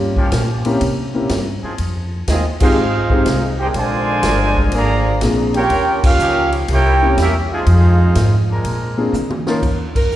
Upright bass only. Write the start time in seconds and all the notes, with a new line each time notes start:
Already playing: G2
0.32 A#2
0.81 C3
1.30 G2
1.63 muted upright bass stroke
1.79 F2
2.28 D#2
2.77 G#1
3.26 C2
3.74 A#1
4.23 G1
4.72 G#1
5.21 A#1
5.70 D#2
6.19 C#2
6.68 C2
7.17 E2
7.67 F2
8.16 G#2
8.64 A#2
9.13 D3
9.62 D#2
10.10 F2